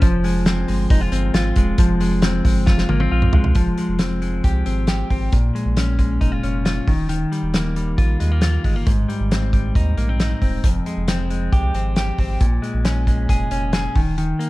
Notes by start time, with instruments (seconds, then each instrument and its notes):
Already playing: clean electric guitar F4 C5
0.02 sub bass F1, clean electric guitar F3, kick, hi-hat pedal, open hi-hat
0.24 clean electric guitar G#3, hi-hat pedal, open hi-hat
0.46 clean electric guitar C4, snare, hi-hat pedal, open hi-hat
0.68 sub bass G1, clean electric guitar G#3, hi-hat pedal, open hi-hat
0.90 sub bass F1, clean electric guitar D#4, kick, hi-hat pedal, open hi-hat
1.01 clean electric guitar F4
1.11 sub bass G1, clean electric guitar C4, hi-hat pedal, open hi-hat
1.33 sub bass G#1, clean electric guitar F4, snare, hi-hat pedal, open hi-hat
1.56 sub bass D#1, clean electric guitar G#3, kick, hi-hat pedal, open hi-hat
1.78 sub bass F1, clean electric guitar F3, kick, hi-hat pedal, open hi-hat
2.00 clean electric guitar G#3, hi-hat pedal, open hi-hat
2.22 clean electric guitar C4, snare, hi-hat pedal, open hi-hat
2.45 sub bass G1, clean electric guitar G#3, kick, hi-hat pedal, open hi-hat
2.66 sub bass F1, clean electric guitar F4, kick, snare
2.78 snare
2.89 sub bass G#1, clean electric guitar A#3, high tom
3.00 clean electric guitar C4, high tom
3.11 sub bass A#1, clean electric guitar F4
3.22 mid tom
3.33 sub bass C2, clean electric guitar G#3, floor tom
3.44 floor tom
3.55 sub bass F1, clean electric guitar F3, kick, closed hi-hat
3.78 clean electric guitar G#3, closed hi-hat
3.88 sub bass F1
3.99 clean electric guitar C4, snare, closed hi-hat
4.22 clean electric guitar G#3, closed hi-hat
4.44 sub bass C2, clean electric guitar G4, kick, closed hi-hat
4.66 sub bass G#1, clean electric guitar C4, closed hi-hat
4.87 clean electric guitar G4, snare, closed hi-hat
5.10 sub bass G#1, clean electric guitar C4, kick, open hi-hat
5.32 sub bass A#1, clean electric guitar A#2, kick, closed hi-hat
5.55 clean electric guitar G#3, closed hi-hat
5.65 sub bass A#1
5.77 clean electric guitar C#4, snare, closed hi-hat
5.99 clean electric guitar G#3, kick, closed hi-hat
6.21 sub bass F1, clean electric guitar D#4, kick, closed hi-hat
6.32 clean electric guitar F4
6.43 sub bass F1, clean electric guitar C#4, closed hi-hat
6.65 clean electric guitar F4, snare, closed hi-hat
6.87 sub bass D#1, clean electric guitar D#3, kick, open hi-hat
7.09 clean electric guitar D#3, closed hi-hat
7.32 clean electric guitar G3, closed hi-hat
7.42 sub bass D#1
7.54 clean electric guitar A#3, snare, closed hi-hat
7.76 clean electric guitar G3, closed hi-hat
7.98 sub bass A#1, clean electric guitar F4, kick, closed hi-hat
8.20 sub bass D#2, clean electric guitar G#3, closed hi-hat
8.32 clean electric guitar A#3
8.41 clean electric guitar F4, snare, closed hi-hat
8.64 sub bass G1, clean electric guitar G#3, kick, open hi-hat
8.76 clean electric guitar A#3
8.87 sub bass G#1, clean electric guitar G#2, kick, closed hi-hat
9.09 clean electric guitar G3, closed hi-hat
9.20 sub bass G#1
9.31 clean electric guitar C4, snare, closed hi-hat
9.53 clean electric guitar G3, kick, closed hi-hat
9.75 sub bass D#2, clean electric guitar D#4, kick, closed hi-hat
9.97 sub bass A#1, clean electric guitar A#3, closed hi-hat
10.09 clean electric guitar C4
10.20 clean electric guitar D#4, snare, closed hi-hat
10.42 sub bass D#1, clean electric guitar C4, kick, open hi-hat
10.64 sub bass F1, clean electric guitar F2, kick, closed hi-hat
10.86 clean electric guitar G#3, closed hi-hat
10.97 sub bass F1
11.08 clean electric guitar C4, snare, closed hi-hat
11.30 clean electric guitar G#3, closed hi-hat
11.52 sub bass C2, clean electric guitar G4, kick, closed hi-hat
11.74 sub bass G#1, clean electric guitar C4, closed hi-hat
11.96 clean electric guitar G4, snare, closed hi-hat
12.18 sub bass G#1, clean electric guitar C4, kick, open hi-hat
12.40 sub bass A#1, clean electric guitar A#2, kick, closed hi-hat
12.62 clean electric guitar G#3, closed hi-hat
12.74 sub bass A#1
12.85 clean electric guitar C#4, snare, closed hi-hat
13.07 clean electric guitar G#3, kick, closed hi-hat
13.29 sub bass F1, clean electric guitar G#4, kick, closed hi-hat
13.51 sub bass F1, clean electric guitar C#4, closed hi-hat
13.73 clean electric guitar G#4, snare, closed hi-hat
13.95 sub bass D#1, clean electric guitar D#3, kick, open hi-hat
14.18 clean electric guitar D#3, closed hi-hat
14.39 clean electric guitar A#3, closed hi-hat